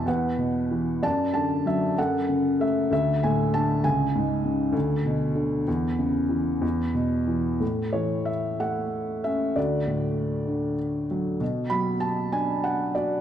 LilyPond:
<<
  \new Staff \with { instrumentName = "Felt piano" } { \time 6/8 \key a \major \tempo 4. = 64 << { fis''4. a''8 a''8 e''8 | fis''4 e''8 e''8 gis''8 a''8 | gis''2.~ | gis''2 r4 |
r8 cis''8 e''8 fis''4 e''8 | d''2 r4 | r8 b''8 a''8 gis''8 fis''8 d''8 | } \\ { b'4. d''4. | a'4. a'4. | r2. | r2. |
r2. | fis'2 r4 | r2. | } >> }
  \new Staff \with { instrumentName = "Felt piano" } { \clef bass \time 6/8 \key a \major e,8 b,8 e8 fis,8 d8 fis8 | fis,8 cis8 a8 d,8 a,8 d8 | cis,8 gis,8 cis8 d,8 b,8 d8 | e,8 cis8 e8 e,8 b,8 e8 |
a,8 e4 a4 cis'8 | d,8 a,4 d4 fis8 | b,8 fis4 d'4 fis'8 | }
>>